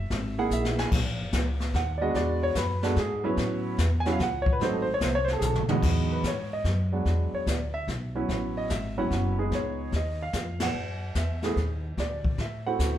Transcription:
Already playing: E5
0.10 G#1, kick, snare
0.38 A#3 D#4 E4 G#4 F#5
0.50 A#1 E5, hi-hat pedal
0.65 snare
0.78 G#5, snare
0.92 B1, brush sweep, kick, snare, crash
1.06 A#1
1.20 F#1
1.33 C#2, kick, snare, hi-hat pedal
1.60 snare
1.74 D#2 F#5, kick, snare
1.98 G#3 B3 D4 F#4 D5
2.02 D#5
2.14 E2 D5, brush sweep, kick, snare
2.43 C#5
2.55 F#2 B4, kick, snare, hi-hat pedal
2.83 G#3 B3 D4 F#4 A4, snare
2.96 G#2 G#4, kick, snare
3.24 F#3 B3 C#4 E4 B4
3.37 A2, brush sweep, kick, snare
3.78 E2, kick, snare, hi-hat pedal
4.00 G#5
4.05 F#3 B3 C#4 E4, snare
4.12 F5
4.19 C#2 F#5, kick, snare
4.42 C#5
4.46 kick
4.53 B4
4.60 G#1 F#3 A3 C4 D#4 C5, brush sweep, kick, snare
4.73 A4
4.82 C5
4.94 C#5
5.01 C2 C5, kick, snare, hi-hat pedal
5.15 C#5
5.25 C5, snare
5.33 A4
5.39 B1 G#4, hi-hat pedal, mid tom
5.45 A4
5.55 mid tom
5.68 E2 F#3 G#3 B3 D#4, muted upright bass stroke, mid tom
5.83 E2, brush sweep, kick, snare, crash
6.12 B4
6.24 G#2 C#5, kick, snare, hi-hat pedal
6.53 D#5
6.64 F#2, kick, snare
6.92 F#3 G#3 B3 D4
7.05 E2, brush sweep, kick, snare
7.33 C#5, muted upright bass stroke
7.47 D2 D5, kick, snare, hi-hat pedal
7.74 E5
7.88 B1, kick, snare
8.15 F#3 B3 C#4 E4
8.29 A1, brush sweep, kick, snare
8.57 D#5
8.69 G#1 E5, kick, snare, hi-hat pedal
8.98 F#3 B3 C#4 E4 F#5
9.11 F#1, kick, snare
9.38 G#3 B3 D#4 G#4
9.51 C#2 C#5, brush sweep, kick, snare
9.92 D#2 D#5, kick, snare
10.22 F5
10.33 F2, kick, snare, hi-hat pedal
10.60 F#5, snare, ride
10.74 F#2, brush sweep
11.15 E2 E5, kick, snare, hi-hat pedal
11.42 A3 B3 E4 G#4, snare
11.56 D#2, kick, snare
11.97 D2 D5, brush sweep, kick, snare
12.25 kick
12.38 A2 E5, kick, snare
12.66 A3 C4 E4 F#4 F#5
12.79 D2, kick, snare, hi-hat pedal

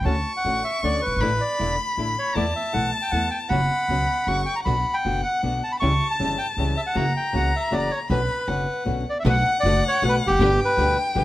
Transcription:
0.01 C#2 D3 C#4
0.05 D2 A3 C#4 D4 F#4 A5 C#6
0.37 F#5
0.45 A1 D3 A3 C#4 D4 F#4
0.64 E5
0.82 D2 D3 A3 C#4 D4 F#4 D5
1.02 B4
1.07 F#1
1.12 G1
1.17 G#1 A3 D4 B5
1.21 A1 D3 A3 D4 E4
1.40 D5
1.59 E1 D3 A3 D4 E4
1.97 A1 D3 A3 D4 E4
2.19 C#5
2.35 E2 E3 A3 B3 E4 D5 A5
2.56 E5
2.73 B1 E3 A3 B3 E4 F#5
2.91 A5
3.02 G5
3.11 E2 E3 A3 B3 E4 F#5
3.30 G5
3.48 F#1 B2 F#3 B3 C#4 F#4 F#5 B5
3.52 B3 C#4 F#4
3.88 C#2 B2 F#3 B3 C#4 F#4
4.27 F#1 C#3 F#3 A#3 C#4 F#4 C#6
4.46 G5
4.56 A#5
4.65 B1 B2 D3 B3 D4 F#4 F#5 B5
4.94 G5
5.05 F#1 B2 D3 B3 D4 F#4
5.23 F#5
5.42 B1 B2 D3 B3 D4 F#4
5.63 A5
5.72 B5
5.80 C#2 C#3 E3 G3 C#4 E4 G4 A5 C#6
6.11 A5
6.19 G1 C#3 E3 G3 C#4 E4 G4
6.38 G5
6.57 C#2 C#3 E3 G3 C#4 E4 G4
6.77 E5
6.86 F#5
6.95 F#1 C#3 E3 A#3 C#4 E4 F#4 A#5
7.16 G5
7.33 C#2 C#3 E3 A#3 C#4 E4 F#4 F#5
7.56 E5
7.71 F#1 C#3 E3 A#3 C#4 E4 F#4 D5
7.91 C#5
8.10 B1 B2 D3 B3 C#4 D4 F#4 B4 B5
8.47 F#1 B2 D3 B3 C#4 D4 F#4 B4 F#5
8.85 B1 B2 D3 B3 C#4 D4 F#4 B4
9.10 D5
9.20 E5
9.25 B1 B2 D3 A3 B3 D4 F#4 A4 B4 F#5
9.29 F#5
9.60 F#1 D5
9.64 B2 D3 A3 B3 D4 F#4 A4 B4
9.88 C#5
10.02 B1 B2 D3 A3 B3 D4 F#4 A4 B4
10.09 B4
10.26 E1 F1 G4
10.35 F#1
10.39 G1 B2 D3 G3 B3 D4 G4 B4 G5
10.65 B4
10.77 D2 B2 D3 G3 B3 D4 G4 B4
11.15 G1 B2 D3 G3 B3 D4 G4 B4

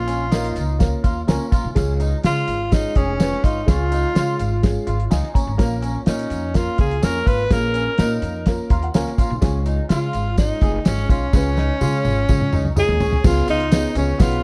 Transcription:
Already playing: A#1 A#3 C#4 F4 C#5
0.07 C#4, closed hi-hat, tambourine
0.32 A#3 C#4 D#4 F4 A#4, snare, closed hi-hat, tambourine
0.44 closed hi-hat
0.56 C#2, closed hi-hat, tambourine
0.79 A#3 C#4 F4 A#4, kick, snare, closed hi-hat, tambourine
1.04 D#2 F4, kick, closed hi-hat, tambourine
1.27 C#2 A#3 C#4 F4 A#4, snare, closed hi-hat, tambourine
1.52 A#1 F4, kick, closed hi-hat, tambourine
1.64 B1
1.75 C#2 G#3 C#4 F4 G#4, kick, snare, closed hi-hat, tambourine
2.00 D#4, closed hi-hat, tambourine
2.24 C#3 G#3 C#4 F4 G#4, snare, closed hi-hat, tambourine
2.48 G#1, closed hi-hat, tambourine
2.71 G#3 C#4 D#4 F4 G#4, kick, snare, closed hi-hat, tambourine
2.95 F1 C#4 G#4, kick, closed hi-hat, tambourine
3.19 G#3 C#4 F4 B4, snare, closed hi-hat, tambourine
3.32 snare
3.44 G#1 D#4 F4, kick, closed hi-hat, tambourine
3.66 C#2 G#3 C#4 F4 G#4, kick, snare, closed hi-hat, tambourine
3.92 D#4, closed hi-hat, tambourine
4.14 C#3 G#3 C#4 F4 G#4, snare, closed hi-hat, tambourine
4.39 G#1, closed hi-hat, tambourine
4.62 G#3 C#4 F4 G#4, kick, snare, closed hi-hat, tambourine
4.87 G#1 F4, closed hi-hat, tambourine
5.00 closed hi-hat
5.10 C#2 D#4 F5 G#5, snare, closed hi-hat, tambourine
5.23 snare
5.34 F#1 C#4 C#5 A#5, kick, closed hi-hat, tambourine
5.47 G#1
5.58 A#1 A#3 C#4 F4 A#4, kick, snare, closed hi-hat, tambourine
5.82 C#4, closed hi-hat, tambourine
6.06 A#2 A#3 C#4 D#4 F4 A#4, snare, closed hi-hat, tambourine
6.19 closed hi-hat
6.30 F2, closed hi-hat, tambourine
6.54 A#3 C#4 F4 A#4, kick, snare, closed hi-hat, tambourine
6.78 C#2 F4 G#4, kick, closed hi-hat, tambourine
6.91 closed hi-hat
7.02 F2 A#3 C#4 F4 A#4, snare, closed hi-hat, tambourine
7.26 G#1 F4 B4, kick, closed hi-hat, tambourine
7.50 A#1 A#3 C#4 F4 G#4 A#4, kick, snare, closed hi-hat, tambourine
7.74 C#4, closed hi-hat, tambourine
7.98 A#2 A#3 C#4 D#4 F4 A#4, snare, closed hi-hat, tambourine
8.22 F2, closed hi-hat, tambourine
8.46 A#3 C#4 F4 A#4, kick, snare, closed hi-hat, tambourine
8.70 D#2 F4 A#5, kick, closed hi-hat, tambourine
8.83 F#5, closed hi-hat
8.94 C#2 A#3 C#4 F4 A#4 F5, snare, closed hi-hat, tambourine
9.06 snare
9.18 A#1 F4, kick, closed hi-hat, tambourine
9.30 B1
9.41 C#2 G#3 C#4 F4 G#4, kick, snare, closed hi-hat, tambourine
9.66 D#4, closed hi-hat, tambourine
9.89 C#3 G#3 C#4 F4 G#4, snare, closed hi-hat, tambourine
10.13 G#1, closed hi-hat, tambourine
10.38 G#3 C#4 D#4 F4 G#4, kick, snare, closed hi-hat, tambourine
10.61 F1 G#4, kick, closed hi-hat, tambourine
10.85 G#1 G#3 C#4 F4 G#4, snare, closed hi-hat, tambourine
10.97 snare
11.09 B1 C#4 F4, kick, closed hi-hat, tambourine
11.33 C#2 G#3 C#4 F4 B4, kick, snare, tambourine
11.57 D#4, snare, tambourine
11.81 C#3 G#3 C#4 F4 G#4, high tom, tambourine
12.05 G#1, high tom, tambourine
12.29 C#3 G#3 C#4 F4 G#4, kick, mid tom, tambourine
12.41 mid tom
12.52 C#2 D#4, mid tom, tambourine
12.65 mid tom
12.76 G#3 C#4 D#4 F4 G#4, mid tom, tambourine
12.89 D#2, floor tom
13.00 B1 C#4, floor tom, tambourine
13.13 floor tom
13.24 C#2 B3 C#4 F4 G#4, kick, snare, crash, tambourine
13.48 C#2 D#4 F4, closed hi-hat, tambourine
13.60 closed hi-hat
13.71 B3 C#4 D#4 F4 G#4, snare, closed hi-hat, tambourine
13.95 C#2 B3 C#4 F4 G#4, closed hi-hat, tambourine
14.19 B1 B3 C#4 F4 G#4, kick, snare, closed hi-hat, tambourine
14.32 closed hi-hat

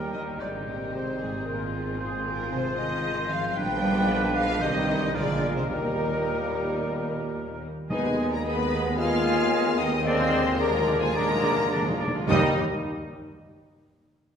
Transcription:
Already playing: D#2 A#2 G3 A#3 D#4 G4 A#4 G5
0.13 D#3 D#5
0.39 G#1 G#2 D3 G#3 C4 G4 C5 D5
0.66 A#2 A#4
0.93 C3 G4 C5
1.20 G#2 G#4
1.46 A#2 F3 F4 G#4 A#4 C5
1.99 G#2 F4 G#4 C5
2.26 A#2 A#4
2.52 C3 F4 C5
2.78 D#3 D#5
3.30 F3 F5
3.55 A#1 G#2 F3 G3 B3 D4 B4 G5
4.35 F3 F5
4.61 C2 G2 D#3 G3 C4 D#4 G4 C5 D#5
5.14 A#1 A#2 D3 G#3 A#3 F4 G#4 A#4 D5
5.56 C3 C5
5.68 D#2 A#2 D#3 G3 A#3 D#4 G4 A#4
7.89 D#2 D#3 G#3 B3 D#4 G#4 B4 D#5 G#5
8.04 G#3 B3
8.17 B3 D#4 G#4 D#5
8.29 G#3 A#3 B3 A#4 D5 A#5
8.42 D#3 G#3 B3 D#4 G#4 B4 D#5 B5
8.60 G#3 B3
8.71 B3 D#4 G#4 D#5
8.86 G#3 B3
8.97 B3 D#4 F4 G#4 D#5 F5 G#5 F6
9.14 G#3 B3
9.25 B3 D#4 G#4 D#5
9.39 G#3 B3
9.53 B3 D#4 G#4 D#5
9.65 G#3 B3
9.77 B3 D#4 G#4 D#5 G5 D#6
9.92 G#3 B3
10.03 D3 D#3 G#3 A#3 C4 D4 G#4 C5 D5 D#5 C6
10.14 D#3
10.19 D#3 G#3 F4
10.27 D#3
10.32 D#3 A#3 D4 G#4 D5
10.43 D#3 G#3
10.47 D#3 F4
10.57 D3 D#3 G#3 A#3 D4 G#4 A#4 D5 A#5
10.65 D#3
10.72 D#3 G#3 F4
10.80 D#3
10.87 D#3 A#3 D4 G#4 D5
10.95 D#3 G#3
11.00 D#3 G#3 F4 G#4 C5 G#5
11.11 D3 D#3 G#3 A#3 A#4 D5 A#5
11.15 D#3 A#3 D4 G#4
11.28 D#3 G#3 F4
11.35 D#3
11.42 D#3 A#3 D4 G#4 D5
11.50 D#3
11.57 D#3 G#3 F4
11.66 D#3
11.71 D#3 A#3 D4 G#4 D5
11.83 D#3 G#3 F4
11.91 D#3
11.99 D#3 A#3 D4 G#4 D5
12.07 D#3
12.14 D#3 G#3 F4
12.28 D#2 D#3 G3 D#4 G4 D#5 D#6

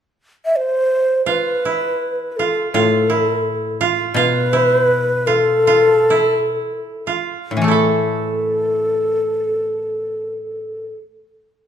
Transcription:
0.45 E5
0.56 C5
1.26 F4 B4
1.65 E4
2.32 B4
2.37 F4 A4
2.74 A2 F4 A4
3.10 E4
3.81 F4
4.14 B2 F4 B4
4.53 E4
5.27 F4 A4
5.67 F4
6.10 E4
7.07 F4
7.51 A2
7.57 E3
7.62 A3 A4
7.68 E4 A4

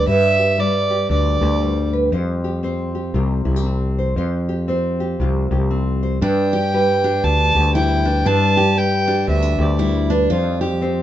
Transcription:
Already playing: G3 G4
0.06 G2 B4 E5
0.39 G4
0.58 G3 B4 D5
0.90 G4
1.10 D2 D3 D4 D5
1.41 D2 G4
1.61 G3
1.93 B4
2.12 F2 F3 C5
2.44 G4
2.63 C4 C5
2.95 G4
3.14 C2 C3 F4
3.45 C2 E4
3.56 G4
3.66 C4
3.99 C5
4.16 F2 F3 C5
4.49 G4
4.68 C4 C5
5.00 G4
5.20 C2 C3 F4
5.51 C2 G4
5.71 C4
6.03 C5
6.21 G2 D4 B4 G5
6.53 G4
6.74 G3 B4
7.04 D4 G4
7.24 D2 D3 D4 A5
7.55 D2 G4
7.75 G3 E4 G5
8.05 D4 B4
8.25 G2 D4 B4 A5
8.56 G4
8.76 G3 B4 G5
9.08 D4 G4
9.27 D2 D3 C4 E5
9.42 D4
9.59 D2 G4 D5
9.78 G3 E4
10.10 D4 B4
10.30 F2 F3 F4 C5
10.61 G4
10.81 C4 C5

